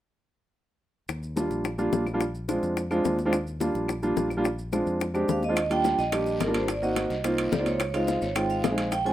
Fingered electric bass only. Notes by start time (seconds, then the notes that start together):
1.09 D#2
1.51 A#1
1.93 A#1
2.63 F2
3.05 D#2
3.75 A#1
4.17 A#1
4.86 F2
5.28 D#2
5.99 A#1
6.41 G#1
7.10 C2
7.52 C#2
8.22 G#1
8.64 A#1